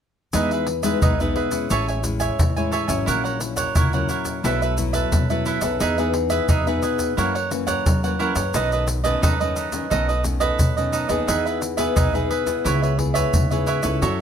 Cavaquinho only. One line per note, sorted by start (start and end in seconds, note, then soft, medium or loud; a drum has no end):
0.34 0.49 D#4 medium
0.34 0.50 G#4 medium
0.34 0.50 B4 medium
0.34 0.50 E5 medium
0.52 0.66 G#4 soft
0.52 0.66 B4 soft
0.52 0.67 E5 soft
0.67 muted cavaquinho stroke soft
0.83 1.01 G#4 medium
0.83 1.00 B4 medium
0.83 1.00 E5 medium
1.02 1.18 D#4 medium
1.02 1.18 G#4 medium
1.02 1.18 B4 medium
1.02 1.19 E5 medium
1.20 1.34 G#4 soft
1.20 1.35 B4 soft
1.20 1.35 E5 soft
1.36 1.69 G#4 soft
1.36 1.69 B4 medium
1.36 1.69 E5 soft
1.70 1.86 A4 medium
1.70 1.87 C#5 medium
1.70 1.87 E5 medium
1.70 1.87 G#5 medium
1.88 2.03 C#5 soft
1.88 2.03 E5 soft
1.88 2.04 G#5 soft
2.04 muted cavaquinho stroke soft
2.20 2.55 C#5 medium
2.20 2.54 E5 medium
2.20 2.54 G#5 medium
2.56 2.71 C#5 soft
2.56 2.72 E5 soft
2.56 2.72 G#5 soft
2.71 2.88 A4 medium
2.71 2.88 C#5 medium
2.71 2.87 E5 medium
2.71 2.86 G#5 medium
2.88 3.05 C#5 soft
2.88 3.05 E5 soft
2.88 3.05 G#5 soft
3.06 3.22 E4 medium
3.06 3.23 A#4 medium
3.06 3.23 C#5 medium
3.06 3.23 F#5 medium
3.24 3.39 A#4 soft
3.24 3.40 C#5 soft
3.24 3.40 F#5 soft
3.40 muted cavaquinho stroke soft
3.56 3.74 A#4 soft
3.56 3.74 C#5 medium
3.56 3.73 F#5 medium
3.75 3.91 E4 medium
3.75 3.92 A#4 medium
3.75 3.92 C#5 medium
3.75 3.92 F#5 medium
3.94 4.08 A#4 soft
3.94 4.09 C#5 soft
3.94 4.09 F#5 soft
4.09 4.42 E4 soft
4.09 4.43 A#4 soft
4.09 4.43 C#5 soft
4.09 4.43 F#5 medium
4.44 4.60 E4 medium
4.44 4.60 A4 medium
4.44 4.60 B4 medium
4.44 4.60 E5 medium
4.62 4.77 A4 soft
4.62 4.77 B4 soft
4.62 4.77 E5 soft
4.78 muted cavaquinho stroke soft
4.93 5.28 A4 medium
4.93 5.28 B4 medium
4.93 5.27 E5 medium
5.30 5.45 A4 soft
5.30 5.46 B4 soft
5.30 5.45 E5 soft
5.46 5.62 E4 medium
5.46 5.62 A4 medium
5.46 5.62 B4 medium
5.46 5.61 E5 medium
5.62 5.79 A4 soft
5.62 5.79 B4 soft
5.62 5.79 E5 soft
5.80 5.96 D#4 medium
5.80 5.97 G#4 medium
5.80 5.97 B4 medium
5.80 5.97 E5 medium
5.98 6.13 G#4 soft
5.98 6.14 B4 soft
5.98 6.14 E5 soft
6.14 muted cavaquinho stroke soft
6.30 6.47 G#4 medium
6.30 6.47 B4 medium
6.30 6.47 E5 medium
6.49 6.65 D#4 medium
6.49 6.65 G#4 medium
6.49 6.65 B4 medium
6.49 6.66 E5 medium
6.67 6.82 G#4 soft
6.67 6.82 B4 soft
6.67 6.82 E5 soft
6.83 7.16 G#4 soft
6.83 7.16 B4 medium
6.83 7.17 E5 medium
7.17 7.33 E4 medium
7.17 7.33 A#4 medium
7.17 7.34 C#5 medium
7.17 7.34 F#5 medium
7.35 7.50 A#4 soft
7.35 7.50 C#5 soft
7.35 7.51 F#5 soft
7.51 muted cavaquinho stroke soft
7.67 8.01 A#4 medium
7.67 8.01 C#5 medium
7.67 8.01 F#5 medium
8.04 8.19 A#4 soft
8.04 8.19 C#5 soft
8.04 8.19 F#5 soft
8.19 8.36 E4 medium
8.19 8.36 A#4 medium
8.19 8.35 C#5 medium
8.19 8.34 F#5 medium
8.36 8.53 A#4 soft
8.36 8.53 C#5 soft
8.36 8.52 F#5 soft
8.54 8.70 D#4 medium
8.54 8.70 A4 medium
8.54 8.71 B4 medium
8.54 8.71 D#5 medium
8.72 8.87 A4 soft
8.72 8.87 B4 soft
8.72 8.87 D#5 soft
8.88 muted cavaquinho stroke soft
9.04 9.21 A4 medium
9.04 9.21 B4 medium
9.04 9.20 D#5 medium
9.22 9.38 D#4 medium
9.22 9.39 A4 medium
9.22 9.39 B4 medium
9.22 9.39 D#5 medium
9.40 9.56 A4 soft
9.40 9.56 B4 soft
9.40 9.56 D#5 soft
9.56 9.89 D#4 soft
9.56 9.90 A4 soft
9.56 9.90 B4 medium
9.56 9.90 D#5 medium
9.90 10.07 D#4 medium
9.90 10.07 A4 medium
9.90 10.07 B4 medium
9.90 10.07 D#5 medium
10.09 10.23 A4 soft
10.09 10.24 B4 soft
10.09 10.24 D#5 soft
10.24 muted cavaquinho stroke soft
10.40 10.75 A4 medium
10.40 10.75 B4 medium
10.40 10.74 D#5 medium
10.77 10.92 A4 soft
10.77 10.92 B4 soft
10.77 10.93 D#5 soft
10.92 11.09 D#4 medium
10.92 11.09 A4 medium
10.92 11.08 B4 medium
10.92 11.07 D#5 medium
11.09 11.27 A4 soft
11.09 11.26 B4 soft
11.09 11.26 D#5 soft
11.27 11.44 D#4 medium
11.27 11.44 G#4 medium
11.27 11.44 B4 medium
11.27 11.44 E5 medium
11.45 11.60 G#4 soft
11.45 11.61 B4 soft
11.45 11.61 E5 soft
11.61 muted cavaquinho stroke soft
11.77 11.95 G#4 medium
11.77 11.95 B4 medium
11.77 11.94 E5 medium
11.96 12.12 D#4 medium
11.96 12.13 G#4 medium
11.96 12.13 B4 medium
11.96 12.12 E5 medium
12.14 12.29 G#4 soft
12.14 12.29 B4 soft
12.14 12.30 E5 soft
12.30 12.63 G#4 soft
12.30 12.64 B4 medium
12.30 12.64 E5 medium
12.64 12.81 E4 medium
12.64 12.81 B4 medium
12.64 12.81 C#5 medium
12.64 12.81 E5 medium
12.82 12.97 B4 soft
12.82 12.98 C#5 soft
12.82 12.98 E5 soft
12.98 muted cavaquinho stroke soft
13.14 13.49 B4 medium
13.14 13.49 C#5 medium
13.14 13.48 E5 medium
13.51 13.66 B4 soft
13.51 13.66 C#5 soft
13.51 13.67 E5 soft
13.67 13.83 E4 medium
13.67 13.83 B4 medium
13.67 13.82 C#5 medium
13.67 13.81 E5 medium
13.83 14.01 B4 soft
13.83 14.00 C#5 soft
13.83 14.00 E5 soft
14.02 14.18 F#4 medium
14.02 14.18 A4 medium
14.02 14.18 C#5 medium
14.02 14.19 E5 medium